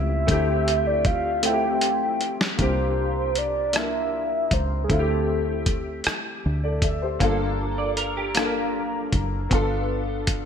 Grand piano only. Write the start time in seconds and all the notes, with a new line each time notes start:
Already playing: E3 A3 C4 F4 G4
0.27 A3 C4 E4
0.31 G4
1.42 A3 C4 E4
1.46 F4
1.53 G4
2.57 A#3 D4 E4
2.61 G4
2.66 F4
3.73 A#3 D4 F4
3.77 A#4
4.88 A3 C4 E4
4.93 F4
4.99 G4
6.64 A4 D5
6.83 A4 E5
7.02 G4 C5
7.19 A#3 D4 F4
7.24 A4
8.34 A#3 D4 F4
8.39 A4
8.45 A#4
9.50 B3 D4 F4
9.54 A4